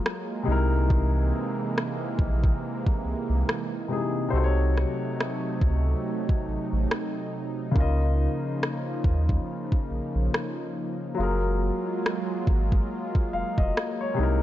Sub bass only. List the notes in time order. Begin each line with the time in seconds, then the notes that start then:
0.47 C2
2.19 A#1
3.05 C2
3.29 C2
4.33 C2
5.62 C#2
6.48 A1
6.73 A1
7.76 C#2
9.04 D#2
9.90 A#1
10.15 A#1
11.19 F#1
12.47 G#1
13.33 F1
13.58 F1
14.19 C2